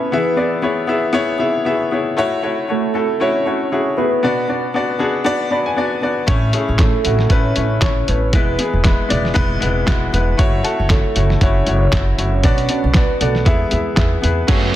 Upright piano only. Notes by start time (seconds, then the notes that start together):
Already playing: A2 C#4 E4 A4 B4 C#5 E5
0.12 E3 B3 E4 G#4 E5
0.36 B3 E4 G#4 D5
0.62 B3 E4 G#4 C#5
0.87 B3 E4 G#4 E5
1.13 B3 E4 G#4 C#5
1.38 B3 E4 G#4 E5
1.65 B3 E4 G#4 E5
1.91 B3 E4 G#4 C#5
2.17 A3 E4 F#4 C#5
2.42 A3 E4 F#4 C#5
2.68 A3 E4 F#4 C#5
2.94 A3 E4 F#4 A4
3.20 A3 E4 F#4 C#5
3.45 A3 E4 F#4 C#5
3.72 A3 E4 F#4 G#4
3.97 A3 E4 F#4 G#4
4.23 B2 B3 D4 F#4 D5
4.48 B3 D4 F#4 D5
4.74 B3 D4 F#4 D5
4.99 B3 D4 F#4 G#4
5.24 B3 D4 F#4 D5
5.50 B3 D4 F#4 D5 B5
5.66 G#5
5.76 B3 D4 F#4 D5 F#5
6.02 B3 D4 F#4 D5
6.27 A2 A3 C#4 E4 C#5
6.53 A3 C#4 E4 G#4
6.78 A3 C#4 E4 C#5
7.04 A3 C#4 E4 F#4
7.29 A3 C#4 E4 B4
7.56 A3 C#4 E4 C#5
7.81 A3 C#4 E4 C#5
8.08 A3 C#4 E4 C#5
8.33 E3 G#3 B3 E4 B4
8.58 G#3 B3 E4 G#4
8.84 G#3 B3 E4 B4
9.09 G#3 B3 E4 D5
9.34 G#3 B3 E4 B4
9.60 G#3 B3 E4 B4
9.86 G#3 B3 E4 F#4
10.13 G#3 B3 E4 B4
10.37 A3 E4 F#4 C#5
10.63 A3 E4 F#4 A4
10.89 A3 E4 F#4 C#5
11.15 A3 E4 F#4 C#5
11.41 A3 E4 F#4 C#5
11.66 A3 E4 F#4 C#5
11.93 A3 E4 F#4 E5
12.18 A3 E4 F#4 C#5
12.44 B2 B3 D4 F#4 D5
12.69 B3 D4 F#4 D5
12.95 B3 D4 F#4 D5
13.21 B3 D4 F#4 D5
13.45 E3 B3 E4 G#4 E5
13.71 B3 E4 G#4 E5
13.95 B3 E4 G#4 E5
14.22 B3 E4 G#4 B4
14.47 A3 F#4 G#4 C#5